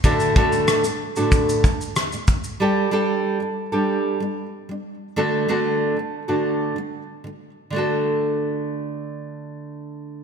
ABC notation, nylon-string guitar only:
X:1
M:4/4
L:1/16
Q:1/4=94
K:D
V:1 name="Nylon-string guitar"
[A,,D,A,DFA]2 [A,,D,A,DFA]3 [A,,D,A,]2 [A,,D,A,DFA]3 [A,,D,A,]2 z [A,,D,A,]2 z | [G,DGA]2 [G,DGA]3 [G,D]2 [G,DGA]3 [G,D]2 z [G,D]2 z | [D,A,DFA]2 [D,A,DFA]3 [D,A,]2 [D,A,DFA]3 [D,A,]2 z [D,A,]2 z | [D,A,DFA]16 |]